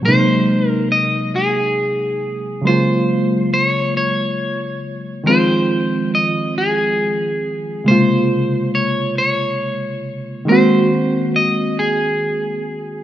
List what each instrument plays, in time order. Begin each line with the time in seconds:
0.01 reed electric piano A#2 F#3 G#3
0.05 reed electric piano C3 A#3 D#4, clean electric guitar C5
0.69 clean electric guitar A#4
0.92 clean electric guitar D#5
1.36 clean electric guitar G#4
2.61 reed electric piano C#3 F#3 G#3
2.67 reed electric piano A#3 F4, clean electric guitar C5
3.54 clean electric guitar C5
3.65 clean electric guitar C#5
3.97 clean electric guitar C#5
5.24 reed electric piano D#3 F3 G#3, clean electric guitar C5
5.28 reed electric piano C4 F4
6.15 clean electric guitar D#5
6.58 clean electric guitar G#4
7.84 reed electric piano C#3 G#3 A#3, clean electric guitar C5
7.89 reed electric piano C3 F4
8.75 clean electric guitar C#5
9.18 clean electric guitar C#5
10.45 reed electric piano D#3 G#3 A#3
10.49 reed electric piano C4 F#4, clean electric guitar C5
11.36 clean electric guitar D#5
11.79 clean electric guitar G#4